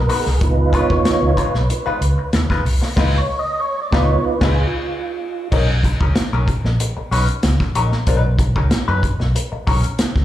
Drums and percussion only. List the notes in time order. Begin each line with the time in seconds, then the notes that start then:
0.09 open hi-hat
0.26 snare
0.41 kick, closed hi-hat
0.73 kick, closed hi-hat
0.90 kick
1.05 snare, closed hi-hat
1.37 kick, closed hi-hat
1.54 snare
1.70 closed hi-hat
2.02 closed hi-hat
2.33 snare, closed hi-hat
2.50 kick, snare
2.66 open hi-hat
2.82 snare
2.97 kick, snare, crash
3.92 kick, snare
4.41 kick, snare, crash
5.52 kick, crash
5.83 kick, closed hi-hat
6.01 kick
6.15 snare, closed hi-hat
6.48 kick, closed hi-hat
6.65 snare
6.80 closed hi-hat
7.12 open hi-hat
7.28 closed hi-hat
7.43 snare, closed hi-hat
7.60 kick, snare
7.75 closed hi-hat
7.92 snare
8.07 kick, closed hi-hat
8.39 kick, closed hi-hat
8.56 kick
8.71 snare, closed hi-hat
9.03 kick, closed hi-hat
9.20 snare
9.36 closed hi-hat
9.67 kick, open hi-hat
9.84 closed hi-hat
9.99 snare, closed hi-hat
10.16 kick, snare